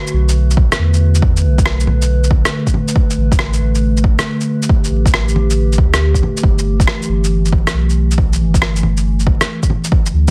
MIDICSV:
0, 0, Header, 1, 4, 480
1, 0, Start_track
1, 0, Tempo, 434783
1, 1345, Time_signature, 4, 2, 24, 8
1, 11378, End_track
2, 0, Start_track
2, 0, Title_t, "Ambient pad"
2, 0, Program_c, 0, 92
2, 0, Note_on_c, 0, 50, 77
2, 0, Note_on_c, 0, 57, 81
2, 0, Note_on_c, 0, 66, 72
2, 0, Note_on_c, 0, 71, 78
2, 3267, Note_off_c, 0, 66, 0
2, 4701, Note_on_c, 0, 67, 81
2, 7097, Note_on_c, 0, 52, 82
2, 7100, Note_off_c, 0, 50, 0
2, 10941, Note_off_c, 0, 52, 0
2, 10946, Note_off_c, 0, 67, 0
2, 10949, Note_on_c, 0, 50, 90
2, 11378, Note_off_c, 0, 50, 0
2, 11378, Note_off_c, 0, 57, 0
2, 11378, Note_off_c, 0, 71, 0
2, 11378, End_track
3, 0, Start_track
3, 0, Title_t, "Sub bass"
3, 0, Program_c, 1, 38
3, 147, Note_on_c, 1, 35, 90
3, 765, Note_off_c, 1, 35, 0
3, 871, Note_on_c, 1, 40, 81
3, 1591, Note_on_c, 1, 35, 87
3, 1607, Note_off_c, 1, 40, 0
3, 2057, Note_off_c, 1, 35, 0
3, 2067, Note_on_c, 1, 35, 91
3, 2685, Note_off_c, 1, 35, 0
3, 3503, Note_on_c, 1, 33, 88
3, 3974, Note_off_c, 1, 33, 0
3, 3986, Note_on_c, 1, 33, 93
3, 4604, Note_off_c, 1, 33, 0
3, 5418, Note_on_c, 1, 33, 84
3, 5891, Note_off_c, 1, 33, 0
3, 5900, Note_on_c, 1, 33, 91
3, 6385, Note_on_c, 1, 38, 98
3, 6402, Note_off_c, 1, 33, 0
3, 6855, Note_off_c, 1, 38, 0
3, 7103, Note_on_c, 1, 31, 92
3, 7573, Note_off_c, 1, 31, 0
3, 7824, Note_on_c, 1, 31, 92
3, 8443, Note_off_c, 1, 31, 0
3, 8539, Note_on_c, 1, 35, 83
3, 9269, Note_on_c, 1, 31, 87
3, 9285, Note_off_c, 1, 35, 0
3, 9736, Note_off_c, 1, 31, 0
3, 9746, Note_on_c, 1, 31, 91
3, 10365, Note_off_c, 1, 31, 0
3, 11186, Note_on_c, 1, 38, 90
3, 11378, Note_off_c, 1, 38, 0
3, 11378, End_track
4, 0, Start_track
4, 0, Title_t, "Drums"
4, 77, Note_on_c, 9, 82, 41
4, 188, Note_off_c, 9, 82, 0
4, 318, Note_on_c, 9, 82, 54
4, 428, Note_off_c, 9, 82, 0
4, 558, Note_on_c, 9, 82, 32
4, 630, Note_on_c, 9, 36, 99
4, 669, Note_off_c, 9, 82, 0
4, 741, Note_off_c, 9, 36, 0
4, 795, Note_on_c, 9, 37, 101
4, 795, Note_on_c, 9, 82, 56
4, 905, Note_off_c, 9, 37, 0
4, 905, Note_off_c, 9, 82, 0
4, 1034, Note_on_c, 9, 82, 30
4, 1144, Note_off_c, 9, 82, 0
4, 1267, Note_on_c, 9, 82, 54
4, 1351, Note_on_c, 9, 36, 111
4, 1377, Note_off_c, 9, 82, 0
4, 1461, Note_off_c, 9, 36, 0
4, 1507, Note_on_c, 9, 82, 44
4, 1617, Note_off_c, 9, 82, 0
4, 1748, Note_on_c, 9, 36, 97
4, 1750, Note_on_c, 9, 82, 56
4, 1828, Note_on_c, 9, 37, 102
4, 1859, Note_off_c, 9, 36, 0
4, 1860, Note_off_c, 9, 82, 0
4, 1938, Note_off_c, 9, 37, 0
4, 1987, Note_on_c, 9, 82, 43
4, 2066, Note_on_c, 9, 61, 34
4, 2098, Note_off_c, 9, 82, 0
4, 2177, Note_off_c, 9, 61, 0
4, 2228, Note_on_c, 9, 82, 55
4, 2339, Note_off_c, 9, 82, 0
4, 2470, Note_on_c, 9, 82, 31
4, 2547, Note_on_c, 9, 36, 104
4, 2580, Note_off_c, 9, 82, 0
4, 2657, Note_off_c, 9, 36, 0
4, 2708, Note_on_c, 9, 37, 99
4, 2708, Note_on_c, 9, 82, 55
4, 2818, Note_off_c, 9, 37, 0
4, 2818, Note_off_c, 9, 82, 0
4, 2944, Note_on_c, 9, 36, 59
4, 2945, Note_on_c, 9, 82, 29
4, 3022, Note_on_c, 9, 61, 35
4, 3055, Note_off_c, 9, 36, 0
4, 3056, Note_off_c, 9, 82, 0
4, 3133, Note_off_c, 9, 61, 0
4, 3180, Note_on_c, 9, 82, 55
4, 3263, Note_on_c, 9, 36, 113
4, 3290, Note_off_c, 9, 82, 0
4, 3374, Note_off_c, 9, 36, 0
4, 3425, Note_on_c, 9, 82, 42
4, 3536, Note_off_c, 9, 82, 0
4, 3662, Note_on_c, 9, 36, 102
4, 3666, Note_on_c, 9, 82, 53
4, 3741, Note_on_c, 9, 37, 103
4, 3772, Note_off_c, 9, 36, 0
4, 3777, Note_off_c, 9, 82, 0
4, 3851, Note_off_c, 9, 37, 0
4, 3900, Note_on_c, 9, 82, 42
4, 4010, Note_off_c, 9, 82, 0
4, 4140, Note_on_c, 9, 82, 55
4, 4251, Note_off_c, 9, 82, 0
4, 4382, Note_on_c, 9, 82, 30
4, 4460, Note_on_c, 9, 36, 104
4, 4493, Note_off_c, 9, 82, 0
4, 4571, Note_off_c, 9, 36, 0
4, 4624, Note_on_c, 9, 37, 104
4, 4624, Note_on_c, 9, 82, 54
4, 4734, Note_off_c, 9, 37, 0
4, 4734, Note_off_c, 9, 82, 0
4, 4863, Note_on_c, 9, 82, 29
4, 4974, Note_off_c, 9, 82, 0
4, 5104, Note_on_c, 9, 82, 51
4, 5182, Note_on_c, 9, 36, 115
4, 5214, Note_off_c, 9, 82, 0
4, 5292, Note_off_c, 9, 36, 0
4, 5344, Note_on_c, 9, 82, 42
4, 5454, Note_off_c, 9, 82, 0
4, 5582, Note_on_c, 9, 36, 99
4, 5591, Note_on_c, 9, 82, 51
4, 5671, Note_on_c, 9, 37, 102
4, 5693, Note_off_c, 9, 36, 0
4, 5701, Note_off_c, 9, 82, 0
4, 5782, Note_off_c, 9, 37, 0
4, 5832, Note_on_c, 9, 82, 41
4, 5915, Note_on_c, 9, 61, 32
4, 5942, Note_off_c, 9, 82, 0
4, 6026, Note_off_c, 9, 61, 0
4, 6074, Note_on_c, 9, 82, 53
4, 6184, Note_off_c, 9, 82, 0
4, 6319, Note_on_c, 9, 82, 30
4, 6383, Note_on_c, 9, 36, 96
4, 6429, Note_off_c, 9, 82, 0
4, 6494, Note_off_c, 9, 36, 0
4, 6553, Note_on_c, 9, 37, 101
4, 6553, Note_on_c, 9, 82, 52
4, 6664, Note_off_c, 9, 37, 0
4, 6664, Note_off_c, 9, 82, 0
4, 6783, Note_on_c, 9, 36, 59
4, 6791, Note_on_c, 9, 82, 29
4, 6875, Note_on_c, 9, 61, 34
4, 6894, Note_off_c, 9, 36, 0
4, 6902, Note_off_c, 9, 82, 0
4, 6986, Note_off_c, 9, 61, 0
4, 7031, Note_on_c, 9, 82, 52
4, 7103, Note_on_c, 9, 36, 108
4, 7141, Note_off_c, 9, 82, 0
4, 7214, Note_off_c, 9, 36, 0
4, 7269, Note_on_c, 9, 82, 40
4, 7379, Note_off_c, 9, 82, 0
4, 7505, Note_on_c, 9, 36, 94
4, 7512, Note_on_c, 9, 82, 51
4, 7589, Note_on_c, 9, 37, 97
4, 7616, Note_off_c, 9, 36, 0
4, 7623, Note_off_c, 9, 82, 0
4, 7700, Note_off_c, 9, 37, 0
4, 7751, Note_on_c, 9, 82, 38
4, 7862, Note_off_c, 9, 82, 0
4, 7994, Note_on_c, 9, 82, 48
4, 8104, Note_off_c, 9, 82, 0
4, 8229, Note_on_c, 9, 82, 29
4, 8308, Note_on_c, 9, 36, 95
4, 8339, Note_off_c, 9, 82, 0
4, 8418, Note_off_c, 9, 36, 0
4, 8469, Note_on_c, 9, 37, 99
4, 8469, Note_on_c, 9, 82, 50
4, 8579, Note_off_c, 9, 37, 0
4, 8579, Note_off_c, 9, 82, 0
4, 8715, Note_on_c, 9, 82, 27
4, 8825, Note_off_c, 9, 82, 0
4, 8954, Note_on_c, 9, 82, 52
4, 9030, Note_on_c, 9, 36, 107
4, 9064, Note_off_c, 9, 82, 0
4, 9140, Note_off_c, 9, 36, 0
4, 9195, Note_on_c, 9, 82, 40
4, 9305, Note_off_c, 9, 82, 0
4, 9430, Note_on_c, 9, 36, 92
4, 9434, Note_on_c, 9, 82, 51
4, 9514, Note_on_c, 9, 37, 95
4, 9541, Note_off_c, 9, 36, 0
4, 9544, Note_off_c, 9, 82, 0
4, 9624, Note_off_c, 9, 37, 0
4, 9670, Note_on_c, 9, 82, 40
4, 9750, Note_on_c, 9, 61, 34
4, 9781, Note_off_c, 9, 82, 0
4, 9860, Note_off_c, 9, 61, 0
4, 9905, Note_on_c, 9, 82, 48
4, 10015, Note_off_c, 9, 82, 0
4, 10151, Note_on_c, 9, 82, 30
4, 10230, Note_on_c, 9, 36, 96
4, 10261, Note_off_c, 9, 82, 0
4, 10341, Note_off_c, 9, 36, 0
4, 10388, Note_on_c, 9, 37, 97
4, 10388, Note_on_c, 9, 82, 49
4, 10499, Note_off_c, 9, 37, 0
4, 10499, Note_off_c, 9, 82, 0
4, 10629, Note_on_c, 9, 82, 28
4, 10630, Note_on_c, 9, 36, 53
4, 10705, Note_on_c, 9, 61, 34
4, 10739, Note_off_c, 9, 82, 0
4, 10740, Note_off_c, 9, 36, 0
4, 10816, Note_off_c, 9, 61, 0
4, 10865, Note_on_c, 9, 82, 51
4, 10950, Note_on_c, 9, 36, 106
4, 10976, Note_off_c, 9, 82, 0
4, 11061, Note_off_c, 9, 36, 0
4, 11104, Note_on_c, 9, 82, 42
4, 11214, Note_off_c, 9, 82, 0
4, 11344, Note_on_c, 9, 82, 52
4, 11378, Note_off_c, 9, 82, 0
4, 11378, End_track
0, 0, End_of_file